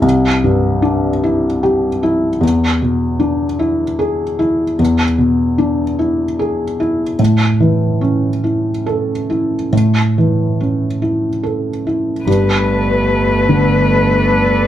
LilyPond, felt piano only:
\new Staff \with { instrumentName = "Felt piano" } { \time 6/8 \key g \major \tempo 4. = 50 <c, e'>8 g,8 d'8 e'8 g'8 e'8 | e,8 b,8 d'8 e'8 gis'8 e'8 | e,8 b,8 d'8 e'8 gis'8 e'8 | a,8 e8 cis'8 e'8 a'8 e'8 |
a,8 e8 cis'8 e'8 a'8 e'8 | g,4. d4. | }